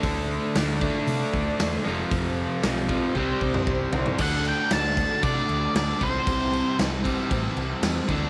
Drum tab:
CC |----------------|----------------|x-x-x-x-x-x-x-x-|x-x-x-x-x-x-x-x-|
HH |o---o---o---o---|o---o-----------|----------------|----------------|
SD |----o-------o---|----o-----------|----o-------o---|----o-------o---|
T2 |----------------|-----------o----|----------------|----------------|
FT |----------------|--------------oo|----------------|----------------|
BD |o-----o---o-----|o-----o-o-o-o---|o-----o-o-----o-|o-----o-o-----o-|